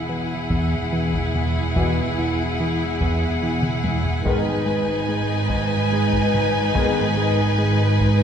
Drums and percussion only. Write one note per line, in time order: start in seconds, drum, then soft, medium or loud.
0.50 taiko medium
1.13 taiko medium
1.35 taiko mid medium
1.76 taiko medium
3.01 taiko medium
3.62 taiko mid medium
3.84 taiko high medium
4.05 taiko low medium
4.26 taiko medium
5.50 taiko medium
6.13 taiko medium
6.35 taiko mid medium
6.75 taiko loud
8.00 taiko medium